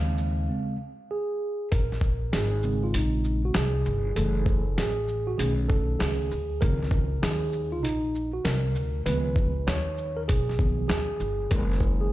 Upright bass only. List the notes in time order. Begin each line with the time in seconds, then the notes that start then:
Already playing: D#2
1.72 A#1
2.33 G#1
2.94 A#1
3.55 C2
3.86 G1
4.17 F#1
4.78 A1
5.39 B1
6.01 C#2
6.31 D2
6.62 C#2
7.23 D#2
7.84 A#1
8.45 C2
8.75 D2
9.06 C#2
9.67 D#2
10.29 B1
10.90 D#2
11.20 G1
11.51 F#1